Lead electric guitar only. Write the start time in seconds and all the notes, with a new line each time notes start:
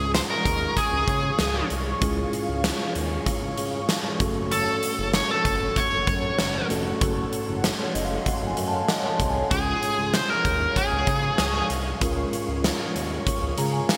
Already playing: G#4
0.15 C5
0.30 A#4
0.77 G#4
4.52 A4
5.15 C#5
5.31 A4
5.77 C#5
9.51 G#4
10.14 C5
10.30 A#4
10.77 G#4